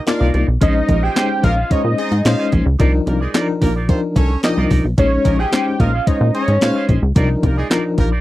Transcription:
0.06 A#3 D4 D#4 F4 A#4 D5 F5, muted clean electric guitar stroke, snare, clap, closed hi-hat
0.20 C2 D#4 F4 A#4 D5
0.34 C2 D#4 F4 A#4 D5, closed hi-hat
0.47 B1, muted clean electric guitar stroke
0.61 A#1 G#3 C#4 D#4 G#4 C5 D#5, kick, closed hi-hat
0.75 muted clean electric guitar stroke
0.88 A#1 F3 A#3 D#4 A#4, muted clean electric guitar stroke, kick, closed hi-hat
1.02 F3 G#3 C#4 D#4 G#4 C5 D#5 G5
1.15 G#3 C#4 D#4 G#4 C5 D#5, snare, clap, closed hi-hat
1.29 muted clean electric guitar stroke
1.43 A#1 F3 A#3 D#4 A#4 F5, muted clean electric guitar stroke, kick, closed hi-hat
1.56 C#4 G#4 C5 D#5
1.70 A#2 G#3 C#4 D#4 F4 C5 C#5 D#5, muted clean electric guitar stroke, kick, closed hi-hat
1.83 A#2, muted clean electric guitar stroke
1.98 C4 D#4 G#4 D#5, closed hi-hat
2.12 G#2, closed hi-hat
2.25 A#2 G#3 C#4 D#4 F4 C5 F5, muted clean electric guitar stroke, snare, clap, closed hi-hat
2.38 C#4 G#4 C5 D#5
2.52 A#1 C#4 G#4 C5 D#5, kick, closed hi-hat
2.65 C#2, muted clean electric guitar stroke
2.79 C2 F3 D4 D#4 F4 A#4 D5, kick, closed hi-hat
2.93 muted clean electric guitar stroke
3.06 C2 G3 A#3 F4 A#4, muted clean electric guitar stroke, closed hi-hat
3.20 G#3 D#4 F4 G#4 A#4 D5
3.34 F3 D4 D#4 F4 A4 A#4 D5, snare, clap, closed hi-hat
3.41 A#4
3.48 muted clean electric guitar stroke
3.61 A#1 G3 A#3 F4 A#4, muted clean electric guitar stroke, kick, open hi-hat
3.75 D#4 F4 A#4 D5
3.89 F3 G3 C4 D4 D#4 F4 A#4 C5, muted clean electric guitar stroke, kick, closed hi-hat
4.02 muted clean electric guitar stroke
4.16 C2 C#4 A4 C#5, kick, closed hi-hat
4.30 muted clean electric guitar stroke
4.43 F3 A#3 D4 D#4 G4 A#4 D#5, snare, clap, closed hi-hat
4.57 C2 D#4 F4 A#4 D5
4.71 C2 D#4 F4 A#4 D5, kick, open hi-hat
4.85 B1, muted clean electric guitar stroke
4.98 A#1 G#3 C#4 D#4 G#4 C5 C#5 D#5, kick, closed hi-hat
5.12 muted clean electric guitar stroke
5.25 A#1 F3 A#3 D#4 A#4, muted clean electric guitar stroke, kick, closed hi-hat
5.39 F3 G#3 C#4 D#4 G#4 C5 D#5 G5
5.52 G#3 C#4 D#4 G#4 C5 D#5, snare, clap, closed hi-hat
5.67 muted clean electric guitar stroke
5.80 A#1 F3 A#3 D#4 A#4 F5, muted clean electric guitar stroke, kick, closed hi-hat
5.94 C#4 G#4 C5 D#5
6.07 A#2 G#3 C#4 D#4 F4 C5 C#5 D#5, muted clean electric guitar stroke, kick, closed hi-hat
6.21 A#2, muted clean electric guitar stroke
6.34 C4 D#4 G#4 C#5 D#5, closed hi-hat
6.48 G#2, closed hi-hat
6.61 A#2 G#3 C#4 D#4 F4 C5 F5, snare, clap, closed hi-hat
6.75 C#4 G#4 C5 D#5
6.88 A#1 C#4 G#4 C5 D#5, kick, closed hi-hat
7.02 C#2, muted clean electric guitar stroke
7.15 C2 F3 D4 D#4 F4 A#4 D5, kick, closed hi-hat
7.29 muted clean electric guitar stroke
7.43 C2 G3 A#3 F4 A#4, muted clean electric guitar stroke, kick, closed hi-hat
7.56 G#3 D#4 F4 G#4 A#4 D5
7.70 F3 D4 D#4 F4 A#4 D5, snare, clap, closed hi-hat
7.84 muted clean electric guitar stroke
7.98 A#1 G3 A#3 F4 A#4, muted clean electric guitar stroke, kick, closed hi-hat
8.11 D#4 F4 A#4 D5

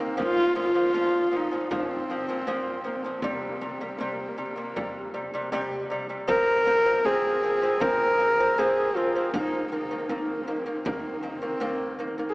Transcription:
Already playing: C4
0.00 D#3 A#3
0.17 A#2 F3, frame drum
0.23 F4
0.55 A#2 F3, frame drum
0.60 F4
0.74 A#2 F3
0.94 A#2 F3, frame drum
1.32 A#2 F3, frame drum
1.37 D#4
1.51 A#2 F3
1.71 A#2 F3 C4, frame drum
2.10 A#2 F3
2.28 A#2 F3
2.47 A#2 F3, frame drum
2.84 A#2 F3 A#3, frame drum
2.95 C4
3.02 A#2 F3 A#3
3.10 C4
3.19 C3 A#3, frame drum
3.24 G3 C4
3.34 A#3
3.39 C4
3.47 A#3
3.57 C4
3.61 C3 G3
3.66 A#3
3.71 C4
3.81 C3 G3 A#3
3.88 C4
3.97 C3 G3 A#3, frame drum
4.04 C4
4.12 A#3
4.21 C4
4.28 A#3
4.37 C3 G3 C4, frame drum
4.46 A#3
4.56 C3 G3
4.76 C3 G3, frame drum
5.14 C3 G3, frame drum
5.34 C3 G3
5.52 C3 G3, frame drum
5.90 C3 G3, frame drum
6.09 C3 G3
6.27 F3 C4 A#4, frame drum
6.66 F3 C4, frame drum
6.85 F3 C4
7.05 F3 C4 G#4, frame drum
7.43 F3 C4, frame drum
7.62 F3 C4
7.80 F3 C4 A#4, frame drum
8.18 F3 C4, frame drum
8.40 F3 C4
8.58 F3 C4 G#4, frame drum
8.96 F3 C4 F4, frame drum
9.15 F3 C4
9.34 D#3 A#3 D#4, frame drum
9.72 D#3 A#3 D#4
9.91 D#3 A#3
10.09 D#3 A#3 C4, frame drum
10.18 D#4
10.27 C4
10.35 D#4
10.43 C4
10.47 D#3 A#3 D#4
10.59 C4
10.66 D#3 A#3 D#4
10.76 C4
10.84 D#3 A#3 D#4, frame drum
10.90 C4
10.98 D#4
11.06 C4
11.14 D#4
11.21 D#3 A#3 C4, frame drum
11.29 D#4
11.37 C4
11.42 D#3 A#3
11.60 D#3 A#3, frame drum
11.99 D#3 A#3, frame drum
12.18 D#3 A#3
12.29 G#4

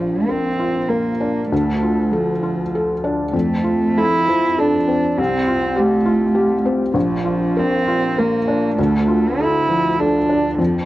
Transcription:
Already playing: A#1 F3 F4
0.28 C4 A#4
0.59 F4
0.88 A#3 A#4
1.20 D4
1.50 D2 A3
1.83 F4
2.13 F3 A4
2.43 F4
2.75 A4
3.04 D4
3.33 F2 A3
3.64 F4
3.98 E4 A4
4.28 F3
4.58 D4 A4
4.88 C4
5.18 C2 C4
5.47 F4
5.76 A3 G4
6.05 F4
6.35 G4
6.65 C4
6.94 A#1 F3
7.25 F4
7.57 C4 A#4
7.88 F4
8.18 A#3 A#4
8.48 D4
8.78 D2 A3
9.08 F4
9.40 E4 A4
9.69 F3
10.00 D4 A4
10.29 D4
10.58 F2 F3

